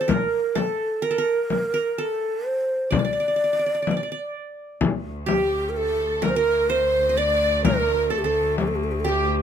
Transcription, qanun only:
0.00 0.14 A4 medium
0.00 0.27 C5 medium
0.00 0.27 D5 medium
0.08 0.61 A#4 medium
0.55 1.08 A4 medium
1.02 1.17 A#4 medium
1.11 1.24 A4 medium
1.18 1.73 A#4 medium
1.74 2.04 A#4 medium
1.98 3.15 A4 medium
2.91 2.99 D5 medium
2.99 3.04 D5 soft
3.05 3.12 D5 medium
3.13 3.20 D5 soft
3.20 3.27 D5 soft
3.28 3.36 D5 soft
3.36 3.44 D5 soft
3.44 3.52 D5 soft
3.53 3.59 D5 soft
3.59 3.66 D5 soft
3.66 3.74 D5 soft
3.75 3.82 D5 soft
3.82 3.91 D5 soft
3.91 3.96 D5 soft
3.97 4.03 D5 soft
4.03 4.11 D5 soft
4.12 5.10 D5 medium
5.26 6.52 G4 medium
6.22 6.36 A#4 medium
6.36 7.49 A#4 medium
6.70 7.75 C5 medium
7.09 7.23 D#5 medium
7.17 8.16 D5 medium
7.65 8.16 A#4 medium
8.10 8.24 A4 medium
8.24 9.41 A4 medium
9.04 9.42 G4 medium

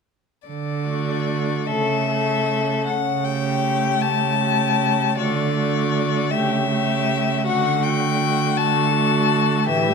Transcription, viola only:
0.87 1.67 A3 soft
1.69 2.08 A3 soft
2.09 2.86 A3 soft
3.26 4.39 A3 soft
4.41 5.17 A3 soft
5.19 5.56 A3 soft
5.56 6.31 A3 soft
6.33 6.70 A3 soft
6.71 7.45 A3 soft
7.47 7.83 A3 soft
7.84 8.93 A3 soft
8.95 9.67 A3 soft
9.69 9.90 E3 soft
9.89 9.94 G3 soft

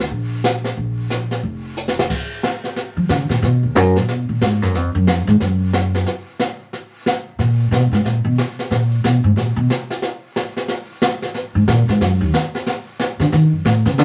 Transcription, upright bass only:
0.00 0.10 D2 medium
0.11 0.74 A#1 medium
0.77 1.40 A#1 medium
1.43 2.06 F1 medium
2.97 3.09 F3 medium
3.09 3.29 C#3 medium
3.29 3.41 A#2 medium
3.42 3.62 B2 medium
3.63 3.76 D#2 medium
3.76 3.95 F#2 medium
3.96 4.09 A#2 medium
4.09 4.28 B2 medium
4.29 4.41 A#2 medium
4.42 4.62 G#2 medium
4.62 4.75 F#2 medium
4.75 4.94 F2 medium
4.95 5.07 F#2 medium
5.07 5.27 F2 medium
5.27 5.40 G#2 loud
5.41 6.03 F#2 medium
7.39 7.69 A#2 medium
7.71 7.91 B2 medium
7.92 8.04 G#2 medium
8.05 8.24 A#2 medium
8.25 8.37 B2 medium
8.71 9.01 A#2 medium
9.04 9.23 B2 medium
9.24 9.35 G#2 medium
9.36 9.56 A#2 medium
9.56 9.64 B2 medium
11.55 11.67 G#2 medium
11.68 11.88 A#2 loud
11.88 12.00 G#2 medium
12.01 12.20 F#2 medium
12.21 12.28 D#2 medium
13.20 13.32 D3 medium
13.33 13.52 D#3 medium
13.53 13.64 F#2 soft
13.65 13.85 A2 medium
13.86 13.99 C#3 medium
13.99 14.04 D3 loud

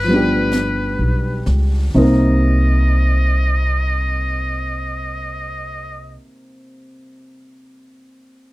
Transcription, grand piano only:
0.04 1.92 F3 soft
0.08 1.94 G3 soft
0.08 1.95 B3 soft
0.13 1.97 D4 soft
0.13 1.98 G4 soft
1.94 6.20 C3 medium
1.94 6.22 A#3 soft
1.94 6.21 C4 soft
1.94 6.22 D#4 soft
1.94 6.23 A#4 medium

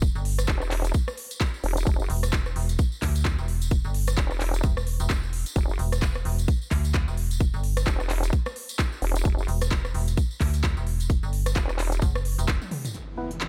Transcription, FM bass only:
0.00 0.13 E1 medium
0.15 0.47 G1 loud
2.10 2.54 E1 medium
2.56 2.77 E1 loud
3.02 3.36 D2 loud
3.39 3.83 E1 medium
3.85 4.16 G1 loud
4.64 4.98 E1 loud
5.00 5.44 E1 medium
5.79 6.24 E1 loud
6.25 6.47 E1 loud
6.71 7.06 D2 loud
7.08 7.52 E1 medium
7.54 7.85 G1 loud
9.48 9.93 E1 medium
9.94 10.16 E1 loud
10.41 10.75 D2 medium
10.77 11.21 E1 loud
11.23 11.54 G1 loud
12.02 12.36 F#1 medium
12.39 12.59 E1 medium

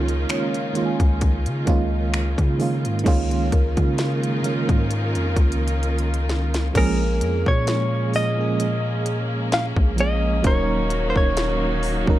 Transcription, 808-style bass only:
0.00 0.25 C#2 loud
1.00 1.48 C#2 loud
1.47 1.67 C#3 loud
1.67 2.36 C#2 loud
2.38 2.87 C#3 loud
2.85 3.05 G#2 loud
3.06 3.50 C#2 loud
3.52 3.76 C#2 loud
3.77 4.66 C#3 medium
4.69 5.17 G#2 loud
5.16 5.36 F2 loud
5.36 6.71 C#2 loud
6.75 7.23 A#1 loud
7.21 7.45 F2 loud
7.46 9.73 A#2 loud
9.77 10.41 A#1 loud
10.44 11.13 D#1 loud
11.16 12.04 D#1 loud
12.08 12.19 D#1 loud

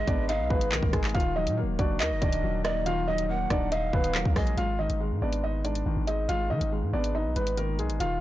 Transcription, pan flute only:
0.00 0.26 D#5 medium
0.29 0.69 F5 medium
2.00 2.61 D#5 loud
2.64 2.85 D5 medium
3.08 3.28 D#5 medium
3.29 3.69 F#5 medium
3.72 4.32 F5 medium
4.37 4.57 D#5 medium

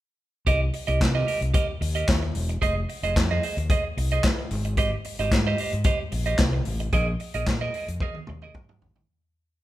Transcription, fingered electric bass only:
0.47 0.67 C2 loud
0.88 0.98 C2 medium
1.01 1.21 C3 medium
1.41 1.51 C2 medium
1.81 2.02 D#2 medium
2.09 2.29 D#2 medium
2.35 2.56 E1 loud
2.62 2.82 F1 loud
3.03 3.13 F1 medium
3.17 3.37 F2 loud
3.57 3.67 D#2 medium
3.97 4.17 C2 medium
4.51 4.92 G#1 loud
5.19 5.29 G#1 medium
5.32 5.52 G#2 medium
5.73 5.83 G#2 medium
6.12 6.33 A#1 medium
6.39 6.59 C2 loud
6.67 6.87 A1 medium
6.93 7.13 A#1 loud
7.34 7.44 A#1 medium
7.47 7.67 A#2 loud
7.88 7.98 F2 medium
8.28 8.48 D#2 medium
8.82 9.02 A1 medium

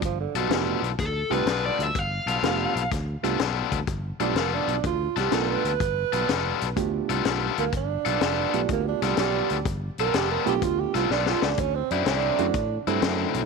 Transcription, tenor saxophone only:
0.05 0.19 F3 medium
0.20 0.38 D3 medium
0.36 0.90 B2 medium
4.21 4.36 G3 medium
4.37 4.56 A#3 medium
4.54 4.84 D4 medium
4.86 5.16 F4 medium
5.19 5.33 G4 medium
5.34 5.54 A#4 medium
5.52 6.91 B4 loud
7.59 7.74 A#3 medium
7.76 8.68 D4 medium
8.72 8.86 A#3 medium
8.88 9.04 D4 medium
9.02 9.18 G3 medium
9.19 9.65 G3 medium
10.00 10.16 A#4 loud
10.15 10.30 G4 medium
10.31 10.46 A#4 medium
10.48 10.65 G4 medium
10.63 10.81 F4 medium
10.80 10.94 G4 medium
10.95 11.10 F4 medium
11.11 11.29 D4 medium
11.28 11.45 F4 medium
11.43 11.61 D4 medium
11.60 11.76 C#4 medium
11.75 11.92 C4 medium
11.91 12.06 D4 medium
12.06 13.00 D4 loud

